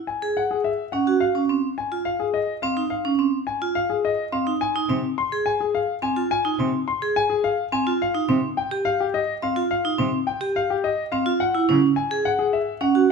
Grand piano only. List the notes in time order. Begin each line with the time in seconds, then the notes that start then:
0.07 G#5
0.37 F#5
0.51 G#4
0.64 E5
0.92 F#5
1.20 F5
1.78 G#5
2.05 F5
2.20 G#4
2.34 D#5
2.62 F5
2.90 F5
3.47 G#5
3.75 F5
3.90 G#4
4.05 D#5
4.33 F5
4.61 G#5
5.18 C6
5.46 G#5
5.60 G#4
5.75 F5
6.03 G#5
6.31 G#5
6.88 C6
7.16 G#5
7.30 G#4
7.44 F5
7.73 G#5
8.02 F5
8.57 G5
8.85 F5
9.00 G4
9.14 D#5
9.43 F5
9.71 F5
10.27 G5
10.56 F5
10.70 G4
10.84 D#5
11.12 F5
11.40 F#5
11.96 G#5
12.25 F#5
12.39 G#4
12.53 E5
12.81 F#5